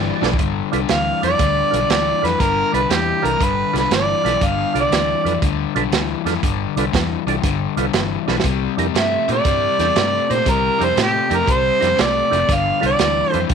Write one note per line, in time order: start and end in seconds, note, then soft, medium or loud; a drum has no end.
0.00 0.10 G1 medium
0.00 0.18 G2 medium
0.00 0.19 E3 medium
0.00 0.37 D5 loud
0.21 0.33 B1 medium
0.21 0.36 G2 medium
0.21 0.37 E3 medium
0.21 0.30 D4 medium
0.21 0.30 F4 medium
0.21 0.31 A4 medium
0.21 0.31 B4 loud
0.21 snare medium
0.34 kick medium
0.38 0.61 G1 medium
0.38 0.69 G2 medium
0.38 0.69 D3 medium
0.38 kick loud
0.38 closed hi-hat medium
0.72 0.84 C2 medium
0.72 0.87 G2 medium
0.72 0.88 D3 medium
0.72 0.80 D4 medium
0.72 0.81 F4 medium
0.72 0.81 A4 medium
0.72 0.81 B4 loud
0.72 closed hi-hat medium
0.89 1.11 D2 medium
0.89 1.19 G2 medium
0.89 1.20 E3 medium
0.89 1.21 F5 medium
0.89 snare medium
0.89 closed hi-hat medium
1.22 1.34 F2 medium
1.22 1.38 G2 medium
1.22 1.38 E3 medium
1.22 1.30 D4 medium
1.22 1.31 F4 medium
1.22 1.31 A4 medium
1.22 1.31 B4 medium
1.22 1.86 D5 loud
1.22 closed hi-hat medium
1.39 1.61 D2 medium
1.39 1.70 G2 medium
1.39 1.70 D3 medium
1.39 kick loud
1.39 snare soft
1.39 closed hi-hat medium
1.70 1.84 B1 medium
1.70 1.88 G2 medium
1.70 1.88 D3 medium
1.70 1.80 D4 medium
1.70 1.80 F4 medium
1.70 1.80 A4 medium
1.70 1.81 B4 medium
1.70 closed hi-hat medium
1.90 2.11 D2 medium
1.90 2.20 G2 medium
1.90 2.21 E3 medium
1.90 2.27 D5 medium
1.90 snare loud
1.90 closed hi-hat medium
2.21 2.34 F2 medium
2.21 2.38 G2 medium
2.21 2.38 E3 medium
2.21 2.31 D4 medium
2.21 2.31 F4 medium
2.21 2.31 A4 medium
2.21 2.32 B4 medium
2.21 closed hi-hat medium
2.25 2.43 B4 medium
2.25 snare soft
2.40 2.62 G1 medium
2.40 2.71 G2 medium
2.40 2.71 D3 medium
2.40 2.74 A#4 medium
2.40 kick loud
2.40 snare soft
2.40 closed hi-hat medium
2.72 2.84 C2 medium
2.72 2.88 G2 medium
2.72 2.89 D3 medium
2.72 2.81 D4 medium
2.72 2.81 F4 medium
2.72 2.82 A4 medium
2.72 2.82 B4 medium
2.72 2.93 B4 medium
2.72 closed hi-hat medium
2.89 3.12 E2 medium
2.89 3.20 G2 medium
2.89 3.21 E3 medium
2.89 3.27 G4 medium
2.89 snare loud
2.89 closed hi-hat medium
3.22 3.35 C2 medium
3.22 3.38 G2 medium
3.22 3.39 E3 medium
3.22 3.31 D4 medium
3.22 3.31 F4 medium
3.22 3.32 A4 medium
3.22 3.45 A#4 medium
3.22 3.32 B4 medium
3.22 closed hi-hat medium
3.39 3.63 G1 medium
3.39 3.70 G2 medium
3.39 3.71 D3 medium
3.39 kick loud
3.39 closed hi-hat medium
3.43 3.76 B4 medium
3.73 3.85 C2 medium
3.73 3.89 G2 medium
3.73 3.89 D3 medium
3.73 3.82 D4 medium
3.73 3.82 F4 medium
3.73 3.82 A4 medium
3.73 3.83 B4 medium
3.73 snare soft
3.73 closed hi-hat medium
3.78 3.92 B4 medium
3.91 4.13 G1 medium
3.91 4.21 G2 medium
3.91 4.21 E3 medium
3.91 snare loud
3.91 closed hi-hat medium
3.95 4.46 D5 medium
4.24 4.35 B1 medium
4.24 4.39 G2 medium
4.24 4.40 E3 medium
4.24 4.32 D4 medium
4.24 4.32 F4 medium
4.24 4.33 A4 medium
4.24 4.33 B4 medium
4.24 snare soft
4.24 closed hi-hat medium
4.41 4.63 G1 medium
4.41 4.72 G2 medium
4.41 4.72 D3 medium
4.41 4.77 F5 loud
4.41 kick loud
4.41 closed hi-hat medium
4.74 4.86 C2 medium
4.74 4.90 G2 medium
4.74 4.91 D3 medium
4.74 4.83 D4 medium
4.74 4.83 F4 medium
4.74 4.83 A4 medium
4.74 4.83 D5 medium
4.74 closed hi-hat medium
4.80 5.40 D5 medium
4.91 5.13 D2 medium
4.91 5.22 G2 medium
4.91 5.23 E3 medium
4.91 snare loud
4.91 closed hi-hat medium
5.24 5.36 F2 medium
5.24 5.41 G2 medium
5.24 5.41 E3 medium
5.24 5.33 D4 medium
5.24 5.33 F4 medium
5.24 5.33 A4 medium
5.24 5.34 B4 medium
5.24 closed hi-hat medium
5.42 5.64 D2 medium
5.42 5.73 G2 medium
5.42 5.73 D3 medium
5.42 kick loud
5.42 closed hi-hat medium
5.75 5.86 B1 medium
5.75 5.91 G2 medium
5.75 5.91 D3 medium
5.75 5.84 D4 medium
5.75 5.84 F4 medium
5.75 5.84 A4 medium
5.75 5.85 B4 medium
5.75 closed hi-hat medium
5.91 6.14 D2 medium
5.91 6.23 G2 medium
5.91 6.23 E3 loud
5.91 snare loud
5.91 closed hi-hat medium
6.25 6.36 F2 medium
6.25 6.41 G2 medium
6.25 6.41 E3 medium
6.25 6.34 D4 medium
6.25 6.35 F4 medium
6.25 6.35 A4 medium
6.25 6.35 B4 medium
6.25 snare soft
6.25 closed hi-hat medium
6.43 6.65 G1 medium
6.43 6.74 G2 medium
6.43 6.74 D3 medium
6.43 kick loud
6.43 closed hi-hat medium
6.76 6.87 C2 medium
6.76 6.92 G2 medium
6.76 6.92 D3 medium
6.76 6.85 D4 medium
6.76 6.85 F4 medium
6.76 6.86 A4 medium
6.76 6.86 B4 loud
6.76 closed hi-hat medium
6.93 7.16 E2 medium
6.93 7.24 G2 medium
6.93 7.24 E3 medium
6.93 kick medium
6.93 snare loud
6.93 closed hi-hat medium
7.26 7.37 C2 medium
7.26 7.42 G2 medium
7.26 7.42 E3 medium
7.26 7.35 D4 medium
7.26 7.36 F4 medium
7.26 7.36 A4 medium
7.26 7.37 D5 medium
7.26 closed hi-hat medium
7.43 7.66 G1 medium
7.43 7.74 G2 medium
7.43 7.74 D3 medium
7.43 kick loud
7.43 snare soft
7.43 closed hi-hat medium
7.77 7.88 C2 medium
7.77 7.92 G2 medium
7.77 7.93 D3 medium
7.77 7.85 D4 medium
7.77 7.86 F4 medium
7.77 7.86 A4 medium
7.77 7.86 B4 medium
7.77 closed hi-hat medium
7.93 8.16 G1 medium
7.93 8.24 G2 medium
7.93 8.24 E3 medium
7.93 snare loud
7.93 closed hi-hat medium
8.27 8.39 B1 medium
8.27 8.43 G2 medium
8.27 8.43 E3 medium
8.27 8.36 D4 medium
8.27 8.36 F4 medium
8.27 8.37 A4 medium
8.27 8.37 B4 medium
8.27 snare medium
8.40 8.75 C3 medium
8.40 snare medium
8.44 8.67 C2 medium
8.44 8.75 G3 medium
8.44 kick loud
8.44 closed hi-hat medium
8.77 8.89 F2 medium
8.77 8.93 C3 medium
8.77 8.93 G3 medium
8.77 8.86 D4 medium
8.77 8.87 E4 medium
8.77 8.87 G4 medium
8.77 8.87 A#4 loud
8.77 closed hi-hat medium
8.94 9.17 G2 medium
8.94 9.25 C3 medium
8.94 9.25 A3 medium
8.94 9.28 E5 medium
8.94 snare loud
8.94 closed hi-hat medium
9.28 9.39 A#2 medium
9.28 9.43 C3 medium
9.28 9.44 A3 medium
9.28 9.37 D4 medium
9.28 9.37 E4 medium
9.28 9.38 G4 medium
9.28 9.38 A#4 medium
9.28 10.35 D5 medium
9.28 closed hi-hat medium
9.45 9.67 G2 medium
9.45 9.76 C3 medium
9.45 9.77 G3 medium
9.45 kick loud
9.45 snare soft
9.45 closed hi-hat medium
9.79 9.90 E2 medium
9.79 9.94 C3 medium
9.79 9.95 G3 medium
9.79 9.87 D4 medium
9.79 9.88 E4 medium
9.79 9.88 G4 medium
9.79 9.88 A4 medium
9.79 snare soft
9.79 closed hi-hat medium
9.96 10.18 G2 medium
9.96 10.26 C3 medium
9.96 10.27 A3 medium
9.96 snare loud
9.96 closed hi-hat medium
10.28 10.41 A#2 medium
10.28 10.44 C3 medium
10.28 10.45 A3 medium
10.28 10.37 D4 medium
10.28 10.38 E4 medium
10.28 10.38 G4 medium
10.28 10.39 A#4 medium
10.28 closed hi-hat medium
10.33 10.52 C5 medium
10.45 10.69 C2 medium
10.45 10.76 C3 medium
10.45 10.77 G3 medium
10.45 kick loud
10.45 snare soft
10.45 closed hi-hat medium
10.50 10.86 A#4 medium
10.79 10.91 F2 medium
10.79 10.95 C3 medium
10.79 10.95 G3 medium
10.79 10.88 D4 medium
10.79 10.89 E4 medium
10.79 10.89 G4 medium
10.79 10.89 A#4 medium
10.79 closed hi-hat medium
10.84 10.99 C5 medium
10.96 11.19 A2 medium
10.96 11.27 C3 medium
10.96 11.27 A3 medium
10.96 snare loud
10.96 closed hi-hat medium
11.02 11.37 G4 medium
11.30 11.41 F2 medium
11.30 11.45 C3 medium
11.30 11.46 A3 medium
11.30 11.39 D4 medium
11.30 11.39 E4 medium
11.30 11.39 G4 medium
11.30 11.39 A#4 medium
11.30 closed hi-hat medium
11.36 11.54 A#4 medium
11.46 11.70 C2 medium
11.46 11.78 C3 medium
11.46 11.78 G3 medium
11.46 kick loud
11.46 closed hi-hat medium
11.52 12.03 C5 medium
11.79 11.92 F2 medium
11.79 11.96 C3 medium
11.79 11.96 G3 medium
11.79 11.89 D4 medium
11.79 11.89 E4 medium
11.79 11.89 G4 medium
11.79 11.89 A#4 medium
11.79 snare soft
11.79 closed hi-hat medium
11.97 12.20 C2 medium
11.97 12.28 C3 medium
11.97 12.28 A3 medium
11.97 snare loud
11.97 closed hi-hat medium
12.02 12.55 D5 loud
12.29 12.43 F1 medium
12.29 12.47 C3 medium
12.29 12.47 A3 medium
12.29 12.39 D4 medium
12.29 12.39 E4 medium
12.29 12.40 G4 medium
12.29 12.40 A#4 medium
12.29 closed hi-hat medium
12.49 12.71 G1 medium
12.49 12.79 G2 medium
12.49 12.79 D3 medium
12.49 kick loud
12.49 snare soft
12.49 closed hi-hat medium
12.53 12.85 F5 loud
12.80 12.93 C2 medium
12.80 12.97 G2 medium
12.80 12.97 D3 medium
12.80 12.89 D4 medium
12.80 12.90 F4 medium
12.80 12.90 A4 medium
12.80 12.90 B4 medium
12.80 closed hi-hat medium
12.86 13.31 D5 medium
12.99 13.21 D2 medium
12.99 13.30 G2 medium
12.99 13.30 E3 medium
12.99 snare loud
12.99 closed hi-hat medium
13.30 13.48 G2 medium
13.30 13.48 E3 medium
13.30 13.40 D4 medium
13.30 13.40 F4 medium
13.30 13.40 A4 medium
13.30 13.41 B4 medium
13.30 13.47 C5 medium
13.30 closed hi-hat medium
13.34 13.44 F2 medium
13.49 13.54 D2 medium
13.49 13.54 G2 medium
13.49 13.54 D3 medium
13.49 kick loud
13.49 closed hi-hat medium